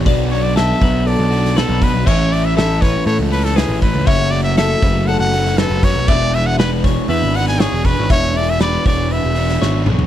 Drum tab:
CC |----------------|x---------------|----------------|x---------------|
HH |o-o-o-o-o-o-o-o-|--o-o-o-o-o-o-o-|o-o-o-o-o-o-o-o-|--o-o-o-o-o-o-o-|
SD |----o------oo---|----o-o----oo---|----o------oo---|----o-o----oo---|
T2 |----------------|----------------|----------------|----------------|
FT |----------------|----------------|----------------|----------------|
BD |o-----o-------o-|o-----o-------o-|o-----o-------o-|o-----o-------o-|

CC |----------------|
HH |o-o-o-o-o-o-----|
SD |----o------oo---|
T2 |--------------o-|
FT |---------------o|
BD |o-----o---------|